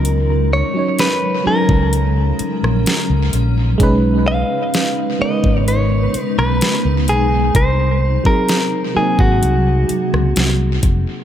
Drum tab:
HH |x---x---x-x-x-x-|x---x---x-x-x-x-|x---x---x-x-x-x-|
SD |----o------ro---|----o------ro---|----o------ro---|
BD |-------o--------|o------o--------|o--o---o------o-|